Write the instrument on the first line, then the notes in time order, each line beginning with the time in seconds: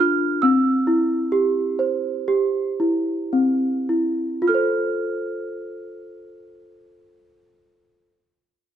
celesta
Already playing: D4 A#4
0.00 F4 F6
0.42 C4 E6
0.87 E4
1.32 G4
1.79 C5
2.28 G4
2.80 E4
3.33 C4
3.89 E4
4.42 F4
4.48 A4 F6
4.54 C5